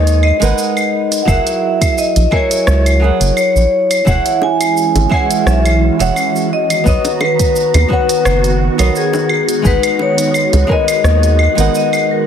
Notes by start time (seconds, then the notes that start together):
Already playing: D#2 G#3 D#4 A#4 B4 D#5 G#5
0.07 closed hi-hat, shaker
0.23 D#5, claves
0.40 G#1 G#3 D#4 A#4 B4, closed hi-hat, shaker
0.44 F#5
0.58 shaker
0.77 claves, shaker
1.12 closed hi-hat, shaker
1.22 F#3 E4 F#5
1.27 F#1 G#4 A#4 E5 F#5, kick, claves, shaker
1.47 closed hi-hat, shaker
1.81 kick, closed hi-hat, claves, shaker
1.92 E5
1.98 D#5, shaker
2.16 A#1, closed hi-hat, shaker
2.31 F#3 E4 G#4 A#4 C#5 G#5, kick, claves
2.51 closed hi-hat, shaker
2.67 C#2, cross-stick, shaker
2.86 closed hi-hat, claves, shaker
2.99 F#3 E4 G#4 A#4
3.04 F#5
3.20 F#1, closed hi-hat, shaker
3.37 C#5, claves, shaker
3.55 A#1, shaker
3.91 closed hi-hat, claves, shaker
4.05 E1 E3 G#3 C#4 E4 F#4 G#4 C#5 F#5, kick, claves, shaker
4.09 F#5
4.26 closed hi-hat, shaker
4.42 G#5, high bongo
4.61 closed hi-hat, claves, shaker
4.77 shaker
4.95 G#1, closed hi-hat, high bongo, shaker
5.09 E3 E4 G#4 C#5 F#5, kick, claves
5.14 G#5
5.31 closed hi-hat, shaker
5.46 B1 E5, cross-stick, shaker
5.65 closed hi-hat, claves, shaker
5.99 E1 E3 E4 G#4 C#5 F#5, closed hi-hat, shaker
6.16 claves, shaker
6.36 shaker
6.51 D#3 B3 D#5 A#5
6.70 closed hi-hat, claves, shaker
6.84 B1 B3 F#4 B4 C#5 D#5, kick, shaker
6.88 D#5
7.05 closed hi-hat, high bongo, shaker
7.20 B4, high bongo, claves
7.39 kick, closed hi-hat, shaker
7.56 shaker
7.74 D#2, closed hi-hat, high bongo, claves, shaker
7.88 B3 F#4 B4 C#5, kick
7.93 F#5
8.09 closed hi-hat, shaker
8.25 F#1, cross-stick, claves, shaker
8.44 closed hi-hat, shaker
8.78 B1 B3 F#4 A#4 C#5 D#5, closed hi-hat, claves, shaker
8.96 G#4, shaker
9.13 high bongo, shaker
9.29 G#3 B3, claves
9.49 closed hi-hat, shaker
9.62 G#1 G#3 D#4 G#4 B4, kick, shaker
9.67 B4 F#5
9.83 closed hi-hat, claves, shaker
9.99 C#5, high bongo
10.18 closed hi-hat, shaker
10.34 claves, shaker
10.53 C#2, closed hi-hat, high bongo, shaker
10.67 G#3 D#4 A#4 B4, kick
10.71 D#5 G#5
10.88 closed hi-hat, claves, shaker
11.04 D#2, cross-stick, shaker
11.23 closed hi-hat, shaker
11.39 claves
11.55 G#1 G#3 B3 D#4 A#4, closed hi-hat, shaker
11.60 F#5
11.75 D#5, shaker
11.93 claves, shaker
12.11 A#4